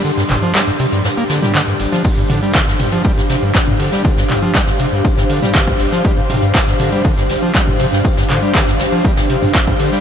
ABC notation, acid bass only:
X:1
M:4/4
L:1/16
Q:1/4=120
K:Gm
V:1 name="Acid bass" clef=bass
D, G,, G,,, F, G, G,, C, G,, G,, B, D, G, D, G,, G,,, F, | G,, G,, D, G, D, G,, G,,, F, G, G,, C, G,, z G,, D, G, | D, G,, G,,, F, G, G,, C, G,, z G,, D, G, D, G,, G,,, F, | G, G,, C, G,, z G,, D, G, D, G,, G,,, F, G, G,, C, G,, |
G,, G,, D, G, D, G,, G,,, F, G, G,, C, G,, G,, G,, D, G, |]